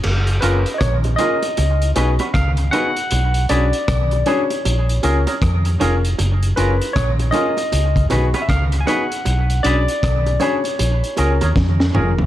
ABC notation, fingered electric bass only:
X:1
M:4/4
L:1/16
Q:"Swing 16ths" 1/4=78
K:F#
V:1 name="Fingered electric bass" clef=bass
F,,,2 F,,, z A,,,2 z2 C,,2 B,,, z C,,2 z2 | B,,,2 B,,, z B,,,2 z2 A,,,2 C,, z E,,2 E,,,2 | F,,,2 F,,, z A,,,2 z2 C,,2 B,,, z C,,2 z2 | B,,,2 B,,, z B,,,2 z2 A,,, z C,, D,, E,,2 E,,,2 |]